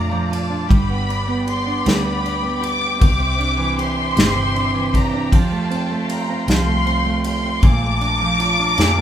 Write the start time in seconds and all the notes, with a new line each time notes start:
Already playing: F2 A#2 F3 A3 D4 F4 D5 F5 A#5 D6
0.12 F3
0.31 F4 A5, ride
0.50 D4
0.69 G1 G3 B3 G4 D5 G5 B5, kick, ride
0.89 B3
1.09 D4, ride
1.28 B3
1.47 G4 C6, ride
1.67 D4
1.85 D2 G3 G4 B5, snare, ride
2.04 B3
2.24 D4, ride
2.43 B3
2.61 G4 D6, ride
2.81 D4
2.99 C2 C3 G4 C5 E5 D6, kick, ride
3.19 C4
3.39 D4, ride
3.57 E3
3.78 G4 C6, ride
3.97 D4
4.16 G1 C3 G4, snare, ride
4.36 C4
4.55 D4, ride
4.74 E3
4.94 G4 A#5, kick, ride
5.14 D4
5.32 F1 F3 A3 G4 F5 A5 C6, kick, ride
5.52 A3
5.70 C4, ride
5.91 A3
6.09 G4 A#5, ride
6.29 C4
6.47 C2 F3 G4 C6, snare, ride
6.67 A3
6.86 C4, ride
7.05 A3
7.24 G4 C6, ride
7.44 C4
7.62 A#1 A#2 F4 F5 A5 A#5 D6, kick, ride
7.82 A3
8.01 D4, ride
8.21 F3
8.40 F4, ride
8.59 D4
8.78 F2 A#2 F4, snare, ride
8.97 A3